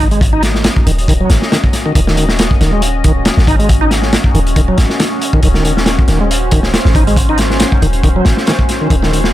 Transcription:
Already playing: 808-style bass G#1, ambient pad C#4 F#4 D#5
0.00 kick
0.11 tonewheel organ G#3, closed hi-hat
0.21 kick, closed hi-hat
0.33 tonewheel organ D#4
0.43 snare, closed hi-hat
0.55 snare
0.64 snare, closed hi-hat
0.76 kick
0.87 808-style bass D#1, tonewheel organ D#3, closed hi-hat
0.98 closed hi-hat
1.08 tonewheel organ D#3, kick, closed hi-hat
1.21 tonewheel organ F#3
1.30 808-style bass G#1, snare, closed hi-hat
1.42 snare
1.52 tonewheel organ D#3, snare, closed hi-hat
1.64 kick
1.73 snare, closed hi-hat
1.86 tonewheel organ D#3
1.95 808-style bass D#1, tonewheel organ D#3, kick, closed hi-hat
2.07 tonewheel organ D#3, snare
2.17 tonewheel organ D#3, closed hi-hat
2.29 snare
2.39 snare, closed hi-hat
2.51 kick
2.61 808-style bass D#1, tonewheel organ D#3, snare, closed hi-hat
2.73 tonewheel organ G#3
2.82 closed hi-hat
3.04 tonewheel organ D#3, kick, closed hi-hat
3.25 snare, closed hi-hat
3.37 808-style bass G#1, snare
3.47 tonewheel organ D#4, kick, closed hi-hat
3.59 tonewheel organ G#3, closed hi-hat
3.69 kick, closed hi-hat
3.81 tonewheel organ D#4
3.91 snare, closed hi-hat
4.02 snare
4.13 snare, closed hi-hat
4.24 kick
4.34 808-style bass D#1, tonewheel organ D#3, closed hi-hat
4.47 closed hi-hat
4.56 tonewheel organ D#3, kick, closed hi-hat
4.68 tonewheel organ F#3
4.78 808-style bass G#1, snare, closed hi-hat
4.90 snare
5.00 tonewheel organ D#3, snare, closed hi-hat
5.22 closed hi-hat
5.33 tonewheel organ D#3, kick
5.43 808-style bass D#1, tonewheel organ D#3, ambient pad C5, kick, closed hi-hat
5.54 tonewheel organ D#3, snare
5.65 tonewheel organ D#3, closed hi-hat
5.77 snare
5.86 snare, closed hi-hat
5.99 kick
6.08 808-style bass D#1, tonewheel organ D#3, snare, closed hi-hat
6.21 tonewheel organ G#3
6.31 closed hi-hat
6.51 tonewheel organ D#3, kick, closed hi-hat
6.63 snare
6.74 snare, closed hi-hat
6.85 808-style bass G#1, snare
6.95 tonewheel organ D#4, kick, closed hi-hat
7.07 tonewheel organ G#3, closed hi-hat
7.16 kick, closed hi-hat
7.29 tonewheel organ D#4
7.38 snare, closed hi-hat
7.50 snare
7.60 snare, closed hi-hat
7.72 kick
7.82 808-style bass D#1, tonewheel organ D#3, closed hi-hat
7.93 closed hi-hat
8.03 tonewheel organ D#3, kick, closed hi-hat
8.16 tonewheel organ F#3
8.25 808-style bass G#1, snare, closed hi-hat
8.37 snare
8.47 tonewheel organ D#3, snare, closed hi-hat
8.59 kick
8.69 snare, closed hi-hat
8.81 tonewheel organ D#3
8.90 808-style bass D#1, tonewheel organ D#3, kick, closed hi-hat
9.03 tonewheel organ D#3, snare
9.13 tonewheel organ D#3, closed hi-hat
9.24 snare

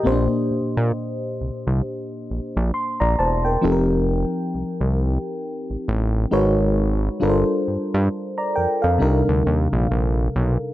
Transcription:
Already playing: fm electric piano D#5
0.03 analog synth bass A#1, fm electric piano A#2 A#3 C4 G4 C5
0.12 fm electric piano D4
0.51 analog synth bass A#2
0.77 analog synth bass A#2
1.41 analog synth bass C2
1.67 analog synth bass C2
2.31 analog synth bass A#1
2.57 analog synth bass A#1
2.74 fm electric piano C6
3.00 analog synth bass A#1, fm electric piano D5 A#5
3.19 analog synth bass E1, fm electric piano C5 A5
3.45 fm electric piano A#4 G5
3.61 analog synth bass F1, fm electric piano F3 C4 D#4 G4 A4
3.72 fm electric piano A#4
4.55 analog synth bass C2
4.81 analog synth bass C2
5.70 analog synth bass A1
5.88 analog synth bass A1
6.31 analog synth bass G#1, fm electric piano G#3 D#4 F#4 A#4 B4 C#5
7.20 analog synth bass G1, fm electric piano G3 D4 F4 A4 A#4 B4
7.30 fm electric piano C5
7.68 analog synth bass G2
7.94 analog synth bass G2
8.38 fm electric piano D5 A#5
8.56 analog synth bass F2, fm electric piano A#4 G5
8.82 analog synth bass F2, fm electric piano A4 F5
8.98 analog synth bass C2, fm electric piano C3 G3 D4 D#4 A#4
9.29 analog synth bass D2
9.47 analog synth bass D#2
9.73 analog synth bass A#1
9.91 analog synth bass A#1
10.36 analog synth bass B1

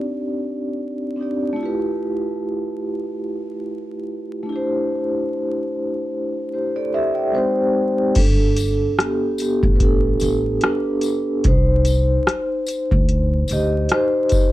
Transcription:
Already playing: vibraphone C4 D4 D#4 G4 D5
1.16 vibraphone C4 D4 D#4
1.21 vibraphone G4 D5
1.53 vibraphone A3 E4
1.60 vibraphone F4 G4
1.65 vibraphone B4
4.43 vibraphone A3 D4
4.49 vibraphone E4 G4
4.56 vibraphone C5
6.53 vibraphone G4 C5
6.76 vibraphone A4 D5
6.94 vibraphone G4 A4 E5
7.14 vibraphone D5 G5
7.32 vibraphone G#3 C4 C5
7.36 vibraphone D#4 G4 C5
8.15 upright bass G1, vibraphone D4 A4, kick, closed hi-hat, crash
8.57 closed hi-hat, tambourine
8.99 vibraphone B3 G4, cross-stick, closed hi-hat
9.38 vibraphone B3 G4, closed hi-hat, tambourine
9.63 upright bass A1, kick
9.76 vibraphone B4
9.80 vibraphone D4 A4, kick, closed hi-hat
10.20 upright bass A1, closed hi-hat, tambourine
10.61 vibraphone D4 B4, cross-stick, closed hi-hat
11.01 closed hi-hat, tambourine
11.44 upright bass C2, vibraphone D#4 C5, kick, closed hi-hat
11.85 closed hi-hat, tambourine
12.27 cross-stick, closed hi-hat
12.67 closed hi-hat, tambourine
12.91 upright bass D2, kick
13.09 closed hi-hat
13.48 upright bass D2, closed hi-hat, tambourine
13.52 vibraphone G4 D#5
13.89 vibraphone D#4, cross-stick, closed hi-hat
13.94 vibraphone C5
14.29 kick, closed hi-hat, tambourine

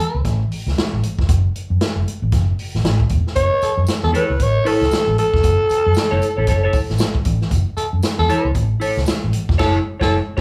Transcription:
Already playing: tenor saxophone A4
0.00 closed hi-hat
0.14 fingered electric bass C#2
0.25 fingered electric bass A1, kick, snare, closed hi-hat
0.52 open hi-hat
0.67 fingered electric bass C#2, snare
0.78 snare, closed hi-hat
0.93 fingered electric bass A1
1.03 closed hi-hat
1.19 fingered electric bass F1, kick, snare
1.29 fingered electric bass F#1, kick, closed hi-hat
1.56 closed hi-hat
1.70 fingered electric bass F#2
1.81 snare, closed hi-hat
1.96 fingered electric bass F#1
2.08 closed hi-hat
2.22 fingered electric bass A1
2.32 fingered electric bass F#1, kick, snare, closed hi-hat
2.59 open hi-hat
2.75 fingered electric bass A1, snare
2.84 fingered electric bass A1, snare, closed hi-hat
3.00 kick
3.09 fingered electric bass E1, kick, closed hi-hat
3.27 snare
3.36 fingered electric bass F#1, alto saxophone C#5, kick, closed hi-hat, tambourine
3.62 tenor saxophone A4, muted fingered electric bass stroke, closed hi-hat, tambourine
3.77 fingered electric bass F#2
3.87 snare, closed hi-hat, tambourine
4.03 fingered electric bass E2, tenor saxophone A4
4.13 clean electric guitar E4 A4 C#5, alto saxophone B4, closed hi-hat, tambourine
4.30 fingered electric bass C#2
4.40 fingered electric bass A1, alto saxophone C#5, kick, closed hi-hat
4.65 clean electric guitar E4 A4 C#5, alto saxophone A4, open hi-hat, tambourine
4.81 fingered electric bass C#2, snare
4.91 muted fingered electric bass stroke, snare, closed hi-hat, tambourine
5.07 fingered electric bass A1
5.18 alto saxophone A4, closed hi-hat, tambourine
5.34 fingered electric bass F1, kick, snare
5.43 fingered electric bass F#1, kick, closed hi-hat, tambourine
5.69 muted fingered electric bass stroke, closed hi-hat, tambourine
5.86 fingered electric bass F#2
5.94 snare, closed hi-hat, tambourine
6.11 fingered electric bass F#1, clean electric guitar E4 A4 C#5
6.22 closed hi-hat, tambourine
6.37 fingered electric bass A1, clean electric guitar E4 A4 C#5
6.47 fingered electric bass F#1, clean electric guitar E4 A4 C#5, kick, snare, closed hi-hat, tambourine
6.63 clean electric guitar E4 A4 C#5
6.73 kick, open hi-hat, tambourine
6.90 fingered electric bass A1, snare
6.98 snare, closed hi-hat, tambourine
7.15 muted fingered electric bass stroke, kick
7.25 fingered electric bass A1, kick, closed hi-hat
7.41 snare
7.51 fingered electric bass F#1, kick, closed hi-hat, tambourine
7.77 tenor saxophone A4, muted fingered electric bass stroke, closed hi-hat, tambourine
7.93 fingered electric bass F#2
8.03 snare, closed hi-hat, tambourine
8.19 fingered electric bass E2, tenor saxophone A4
8.29 clean electric guitar E4 A4 C#5, closed hi-hat, tambourine
8.45 fingered electric bass C#2
8.55 fingered electric bass A1, kick, closed hi-hat, tambourine
8.80 clean electric guitar E4 A4 C#5, open hi-hat, tambourine
8.97 fingered electric bass C#2, snare
9.06 muted fingered electric bass stroke, snare, closed hi-hat, tambourine
9.24 fingered electric bass A1
9.33 closed hi-hat, tambourine
9.49 fingered electric bass F1, kick, snare
9.58 fingered electric bass F#1, clean electric guitar E4 A4 C#5, tenor saxophone A4, kick, snare, crash
10.00 fingered electric bass F#1, clean electric guitar E4 A4 C#5, tenor saxophone A4, kick, snare
10.37 clean electric guitar C#5

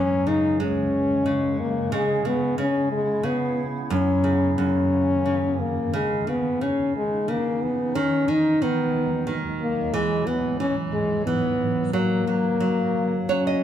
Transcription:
Already playing: nylon-string guitar F#2, ambient pad F#2 C#3 G#3, french horn C#4
0.27 nylon-string guitar C#3, french horn D#4
0.60 nylon-string guitar G#3, french horn C#4
1.26 nylon-string guitar C#3
1.60 french horn A#3
1.92 ambient pad C#3 B3 E4, nylon-string guitar C#3, french horn G#3
2.25 nylon-string guitar C#3, french horn B3
2.58 nylon-string guitar C#3, french horn C#4
2.92 french horn G#3
3.23 nylon-string guitar C#3, french horn B3
3.90 nylon-string guitar F#2, ambient pad F#2 D#3 A#3, french horn C#4
4.24 nylon-string guitar C#3
4.58 nylon-string guitar F#2, french horn C#4
5.26 nylon-string guitar C#3
5.61 french horn A#3
5.93 nylon-string guitar C#3, ambient pad E3 C#4 D#4, french horn G#3
6.27 nylon-string guitar C#3, french horn B3
6.61 nylon-string guitar C#3, french horn C#4
6.96 french horn G#3
7.28 nylon-string guitar C#3, french horn A#3
7.62 french horn B3
7.95 ambient pad D#2 B2 F#3 G#3, nylon-string guitar D#3, french horn C#4
8.28 nylon-string guitar D#3, french horn D#4
8.62 nylon-string guitar D#3, french horn B3
9.27 nylon-string guitar D#3
9.61 french horn A#3
9.93 ambient pad G#2 E3, nylon-string guitar E3, french horn G#3
10.27 nylon-string guitar E3, french horn B3
10.60 nylon-string guitar E3, french horn C#4
10.93 french horn G#3
11.27 nylon-string guitar E3, french horn B3
11.93 ambient pad F#2 C#3 A#3, nylon-string guitar F#3, french horn A#3
12.27 nylon-string guitar F#3
12.60 nylon-string guitar F#3
13.29 nylon-string guitar F#3 C#5, french horn C#4
13.47 nylon-string guitar D#5

